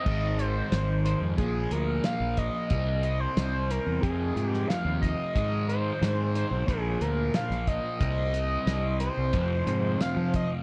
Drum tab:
CC |x---------------|----------------|----------------|----------------|
HH |--x-x-x-x-x-x-x-|x-x-x-x-x-x-x-x-|x-x-x-x-x-x-x-x-|x-x-x-x-x-x-x-x-|
SD |----o-------o---|----o------oo---|----o-------oo--|----o-------o---|
BD |o-------o-----o-|o-------o-----o-|o-------o-----o-|o-------o-----o-|